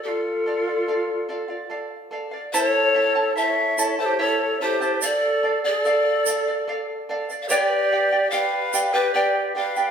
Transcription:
0.03 0.09 G4 medium
0.03 1.66 A4 medium
0.03 0.45 A4 medium
0.03 0.46 D5 medium
0.03 0.46 F5 medium
0.08 1.67 F4 medium
0.46 0.67 A4 medium
0.46 0.68 D5 medium
0.46 0.66 F5 medium
0.67 0.87 D5 soft
0.67 0.88 F5 soft
0.88 1.27 A4 medium
0.88 1.28 D5 medium
0.88 1.29 F5 medium
1.29 1.50 A4 medium
1.29 1.49 D5 medium
1.29 1.47 F5 medium
1.48 1.69 D5 soft
1.48 1.70 F5 medium
1.70 2.10 A4 medium
1.70 2.11 D5 medium
1.70 2.11 F5 medium
2.11 2.33 A4 medium
2.11 2.32 D5 medium
2.11 2.30 F5 medium
2.31 2.53 D5 soft
2.31 2.53 F5 medium
2.53 2.94 E4 medium
2.53 2.95 A4 medium
2.53 2.62 B4 medium
2.53 2.67 C5 loud
2.53 2.95 C#5 medium
2.53 2.93 E5 medium
2.53 2.95 A5 medium
2.53 shaker loud
2.61 3.34 A4 medium
2.67 3.32 C#5 loud
2.94 3.16 E4 medium
2.94 3.15 A4 medium
2.94 3.16 E5 medium
2.94 3.14 A5 medium
3.15 3.35 E4 soft
3.15 3.36 A4 soft
3.15 3.36 A5 medium
3.35 3.76 E4 medium
3.35 3.77 A4 medium
3.35 3.76 E5 medium
3.35 3.95 E5 loud
3.35 3.78 A5 medium
3.35 shaker soft
3.40 3.96 C#5 medium
3.77 3.99 E4 medium
3.77 3.98 A4 medium
3.77 3.98 E5 medium
3.77 3.98 A5 medium
3.77 shaker loud
3.99 4.18 E4 soft
3.99 4.18 A4 soft
3.99 4.07 A4 medium
3.99 4.22 C5 medium
3.99 4.19 A5 medium
4.06 4.24 G4 medium
4.19 4.60 E4 medium
4.19 4.61 A4 medium
4.19 4.62 A4 medium
4.19 4.61 C#5 medium
4.19 4.60 C#5 loud
4.19 4.60 E5 medium
4.19 4.61 A5 medium
4.61 4.81 E4 medium
4.61 5.01 G4 medium
4.61 4.81 A4 medium
4.61 5.00 C5 medium
4.61 4.82 E5 medium
4.61 4.80 A5 medium
4.81 5.01 E4 soft
4.81 5.00 A4 medium
4.81 5.02 A5 medium
4.81 shaker soft
5.02 5.42 A4 medium
5.02 5.61 A4 medium
5.02 5.43 D5 medium
5.02 5.60 D5 loud
5.02 5.44 F5 medium
5.02 shaker loud
5.43 5.64 A4 medium
5.43 5.65 D5 medium
5.43 5.63 F5 medium
5.64 5.81 G#4 medium
5.64 6.84 D5 loud
5.64 5.84 D5 soft
5.64 5.85 F5 medium
5.81 6.85 A4 medium
5.81 6.25 A4 medium
5.81 6.26 D5 medium
5.81 shaker soft
5.86 6.27 F5 medium
6.26 6.47 A4 medium
6.26 6.47 D5 medium
6.26 6.46 F5 medium
6.26 shaker loud
6.47 6.67 D5 soft
6.47 6.68 F5 medium
6.68 7.08 A4 medium
6.68 7.08 D5 medium
6.68 7.09 F5 medium
7.09 7.29 A4 medium
7.09 7.30 D5 medium
7.09 7.29 F5 medium
7.30 7.50 D5 medium
7.30 7.49 F5 medium
7.30 shaker soft
7.42 7.50 D5 medium
7.42 7.50 F5 medium
7.48 8.34 G4 medium
7.48 7.91 G4 loud
7.48 7.91 B4 medium
7.48 7.60 C#5 loud
7.48 7.91 D5 loud
7.48 7.90 F5 medium
7.48 7.92 G5 loud
7.48 shaker loud
7.60 8.32 D5 loud
7.92 8.12 G4 medium
7.92 8.12 D5 medium
7.92 8.12 F5 medium
7.92 8.11 G5 medium
8.12 8.31 G4 soft
8.12 8.32 D5 medium
8.12 8.33 G5 medium
8.31 8.72 G4 medium
8.31 8.38 C5 medium
8.31 8.73 D5 medium
8.31 8.95 F5 loud
8.31 8.72 F5 medium
8.31 8.73 G5 medium
8.31 shaker soft
8.37 8.95 B4 medium
8.73 8.94 G4 medium
8.73 8.94 D5 medium
8.73 8.94 F5 medium
8.73 8.93 G5 medium
8.73 shaker loud
8.93 9.15 G4 medium
8.93 9.14 G4 soft
8.93 9.15 B4 medium
8.93 9.14 D5 soft
8.93 9.14 G5 medium
9.14 9.54 G4 medium
9.14 9.55 G4 medium
9.14 9.56 B4 medium
9.14 9.55 D5 medium
9.14 9.54 F5 medium
9.14 9.55 G5 medium
9.55 9.76 G4 medium
9.55 9.91 B4 medium
9.55 9.76 D5 medium
9.55 9.76 F5 medium
9.55 9.91 F5 loud
9.55 9.76 G5 medium
9.76 9.91 G4 soft
9.76 9.91 D5 soft
9.76 9.91 G5 medium
9.76 shaker soft

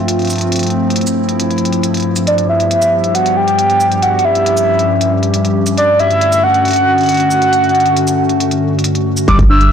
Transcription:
0.00 9.24 G2 medium
0.00 5.74 F3 medium
0.00 2.24 A3 medium
0.00 2.24 C4 medium
0.00 0.50 F4 medium
0.08 closed hi-hat medium
0.19 closed hi-hat soft
0.22 closed hi-hat soft
0.25 closed hi-hat soft
0.27 closed hi-hat soft
0.30 closed hi-hat soft
0.30 cabasa medium
0.33 closed hi-hat soft
0.36 closed hi-hat soft
0.38 closed hi-hat soft
0.41 closed hi-hat medium
0.52 2.25 E4 medium
0.52 closed hi-hat medium
0.56 closed hi-hat medium
0.59 closed hi-hat soft
0.63 closed hi-hat soft
0.67 closed hi-hat soft
0.70 closed hi-hat soft
0.90 closed hi-hat soft
0.96 closed hi-hat medium
1.01 closed hi-hat soft
1.07 cabasa medium
1.29 closed hi-hat soft
1.40 closed hi-hat medium
1.51 closed hi-hat soft
1.58 closed hi-hat soft
1.65 closed hi-hat soft
1.73 closed hi-hat soft
1.83 closed hi-hat medium
1.94 closed hi-hat soft
1.97 closed hi-hat soft
2.00 closed hi-hat soft
2.02 closed hi-hat soft
2.16 closed hi-hat soft
2.16 cabasa medium
2.27 5.74 G3 medium
2.27 4.01 B3 medium
2.27 5.74 G4 medium
2.27 2.47 D5 medium
2.27 closed hi-hat medium
2.38 closed hi-hat soft
2.49 3.16 E5 loud
2.60 closed hi-hat soft
2.71 closed hi-hat medium
2.82 closed hi-hat soft
2.82 cabasa medium
3.04 closed hi-hat soft
3.15 3.38 F#5 loud
3.15 closed hi-hat medium
3.26 closed hi-hat soft
3.37 4.04 G5 loud
3.48 closed hi-hat soft
3.59 closed hi-hat medium
3.70 closed hi-hat soft
3.80 cabasa medium
3.92 closed hi-hat soft
4.02 9.24 C#4 medium
4.02 4.26 F#5 loud
4.02 closed hi-hat medium
4.19 closed hi-hat soft
4.25 5.12 E5 medium
4.35 closed hi-hat soft
4.46 closed hi-hat medium
4.57 closed hi-hat soft
4.57 cabasa medium
4.79 closed hi-hat soft
5.01 closed hi-hat medium
5.23 closed hi-hat soft
5.34 closed hi-hat medium
5.45 closed hi-hat soft
5.67 closed hi-hat soft
5.67 cabasa medium
5.77 9.24 D3 medium
5.77 9.24 A3 medium
5.77 9.24 F#4 medium
5.77 6.01 D5 medium
5.77 closed hi-hat medium
5.99 6.45 E5 loud
5.99 closed hi-hat soft
6.11 closed hi-hat soft
6.21 closed hi-hat medium
6.32 closed hi-hat soft
6.32 cabasa medium
6.43 8.84 F#5 loud
6.54 closed hi-hat soft
6.65 closed hi-hat soft
6.68 closed hi-hat soft
6.71 closed hi-hat soft
6.73 closed hi-hat medium
6.76 closed hi-hat soft
6.98 closed hi-hat soft
7.01 closed hi-hat soft
7.03 closed hi-hat soft
7.06 closed hi-hat soft
7.09 closed hi-hat medium
7.12 closed hi-hat soft
7.14 closed hi-hat soft
7.17 closed hi-hat soft
7.20 closed hi-hat soft
7.31 cabasa medium
7.42 closed hi-hat soft
7.53 closed hi-hat medium
7.64 closed hi-hat soft
7.69 closed hi-hat soft
7.75 closed hi-hat soft
7.80 closed hi-hat soft
7.86 closed hi-hat soft
7.96 closed hi-hat medium
8.07 closed hi-hat soft
8.07 cabasa medium
8.29 closed hi-hat soft
8.40 closed hi-hat medium
8.51 closed hi-hat soft
8.79 closed hi-hat soft
8.84 closed hi-hat medium
8.95 closed hi-hat soft
9.17 cabasa medium
9.28 9.72 G1 medium
9.28 9.72 D3 medium
9.28 9.72 G3 medium
9.28 9.36 G3 loud
9.28 9.72 B3 medium
9.28 9.72 G4 medium
9.28 9.38 D6 loud
9.28 kick loud
9.28 closed hi-hat medium
9.39 kick loud
9.39 closed hi-hat soft
9.50 9.55 D4 medium
9.50 9.72 E6 loud
9.61 9.66 G3 medium
9.61 closed hi-hat medium

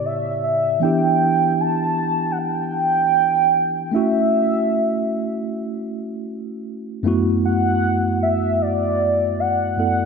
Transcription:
0.00 0.76 A2 medium
0.00 0.78 C#3 medium
0.00 0.77 B3 medium
0.00 0.78 E4 medium
0.00 0.79 G4 medium
0.05 0.43 E5 loud
0.44 0.79 E5 loud
0.80 3.88 E3 medium
0.80 3.89 B3 medium
0.80 3.90 D4 medium
0.80 3.90 E4 medium
0.80 1.62 G5 loud
0.85 3.91 G4 medium
1.60 2.33 A5 loud
2.32 2.40 F#5 medium
2.39 3.94 G5 loud
3.92 7.00 A3 medium
3.92 7.01 C#4 medium
3.92 7.02 E4 medium
3.92 5.46 E5 loud
3.96 7.02 F#4 medium
7.03 9.73 F#2 medium
7.03 9.73 A3 medium
7.03 9.74 B3 medium
7.03 9.74 E4 medium
7.08 9.75 F#4 medium
7.45 8.18 F#5 loud
8.23 8.63 E5 loud
8.62 9.41 D5 loud
9.40 9.78 F#5 loud
9.77 10.05 F#2 medium
9.77 10.05 A3 soft
9.77 10.05 B3 soft
9.77 10.05 E4 soft
9.77 10.05 A4 medium
9.77 10.05 F#5 loud

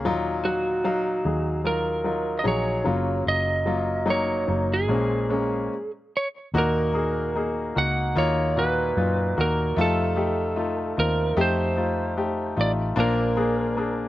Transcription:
0.05 1.21 D#2 medium
0.05 1.21 A#2 medium
0.05 0.43 F#3 medium
0.05 0.43 D#4 medium
0.05 0.43 F4 loud
0.45 0.83 F#3 medium
0.45 0.83 D#4 medium
0.45 1.61 F#4 medium
0.45 0.83 F5 medium
0.84 1.22 F#3 medium
0.84 1.23 D#4 medium
0.84 1.23 F5 medium
1.25 2.41 D#2 medium
1.25 1.63 F#3 medium
1.25 1.63 D#4 medium
1.25 1.63 G#4 medium
1.64 2.02 F#3 medium
1.64 2.03 D#4 medium
1.64 2.03 F4 medium
1.64 2.41 A#4 medium
2.04 2.43 F#3 medium
2.04 2.43 D#4 medium
2.04 2.43 F4 medium
2.39 2.45 D#5 medium
2.44 2.82 A#1 medium
2.44 2.83 F#3 medium
2.44 2.83 D#4 medium
2.44 2.83 G#4 medium
2.44 3.23 C#5 medium
2.85 3.24 F#1 medium
2.85 4.03 C#3 medium
2.85 3.62 F#3 medium
2.85 3.62 A#3 medium
2.85 3.62 F4 medium
3.26 4.44 F#1 medium
3.26 4.10 D#5 medium
3.66 4.04 F#3 medium
3.66 4.05 A#3 medium
3.66 4.05 F4 medium
4.06 4.45 F#3 medium
4.06 4.46 A#3 medium
4.06 4.46 D#4 medium
4.10 4.72 C#5 medium
4.48 4.89 F#1 loud
4.48 4.87 F#3 medium
4.48 4.87 A#3 medium
4.48 4.87 D#4 medium
4.74 5.91 G#4 medium
4.88 5.67 A#1 medium
4.88 5.67 A#2 medium
4.88 5.68 F3 medium
4.88 5.28 G#3 medium
4.88 5.28 A#3 medium
4.88 5.28 C#4 medium
5.29 5.69 G#3 medium
5.29 5.69 A#3 medium
5.29 5.70 C#4 medium
6.17 6.27 C#5 medium
6.54 7.72 D#2 loud
6.54 7.72 A#2 medium
6.54 6.92 A#3 medium
6.54 6.93 D#4 medium
6.54 6.93 F#4 medium
6.58 7.82 A#4 medium
6.94 7.33 A#3 medium
6.94 7.33 D#4 medium
6.94 7.33 G#4 medium
7.36 7.74 A#3 medium
7.36 7.74 D#4 medium
7.36 7.74 G#4 medium
7.75 8.14 C#2 medium
7.75 8.14 A#3 medium
7.75 8.14 D#4 medium
7.75 8.14 F#4 medium
7.75 8.15 F#5 medium
8.16 8.93 D#2 medium
8.16 8.54 A#3 medium
8.16 8.55 D#4 medium
8.16 8.55 F4 loud
8.16 8.59 C#5 medium
8.56 8.95 A#2 medium
8.56 8.95 D#4 medium
8.56 8.96 F#4 medium
8.56 9.40 B4 medium
8.97 9.34 F#2 medium
8.97 9.35 A#2 medium
8.97 9.35 D#4 medium
8.97 9.36 F4 medium
9.37 9.75 D#2 medium
9.37 9.75 A#3 medium
9.37 9.76 D#4 medium
9.37 9.76 F#4 medium
9.37 9.80 A#4 medium
9.76 10.94 F2 loud
9.76 10.94 C3 medium
9.76 10.14 A3 medium
9.76 10.15 D#4 medium
9.76 10.16 F4 loud
9.81 10.99 A4 loud
10.16 10.55 A3 medium
10.16 10.55 D#4 medium
10.16 10.55 G4 medium
10.56 10.95 A3 medium
10.56 10.95 D#4 medium
10.56 10.96 F4 medium
10.97 11.35 D#2 medium
10.97 11.35 C4 medium
10.97 11.35 D#4 medium
10.97 11.36 F4 medium
10.97 11.40 A#4 medium
11.37 12.53 F2 medium
11.37 11.75 A3 medium
11.37 11.75 D#4 medium
11.37 11.75 G4 loud
11.41 12.63 C5 medium
11.76 12.15 A3 medium
11.76 12.15 D#4 medium
11.76 12.16 F4 medium
12.17 12.55 A3 medium
12.17 12.55 D#4 medium
12.17 12.56 G4 medium
12.56 12.95 A1 medium
12.56 12.95 A3 medium
12.56 12.95 D#4 medium
12.56 12.95 F4 medium
12.61 12.71 D5 medium
12.96 14.08 A#1 loud
12.96 14.08 A#2 medium
12.96 14.08 F3 medium
12.96 13.35 A#3 medium
12.96 13.35 D4 medium
12.96 13.35 F4 medium
13.00 14.08 A#4 medium
13.37 13.75 A#3 medium
13.37 13.76 D4 medium
13.37 13.76 G#4 medium
13.77 14.08 A#3 medium
13.77 14.08 D4 medium
13.77 14.08 G#4 medium

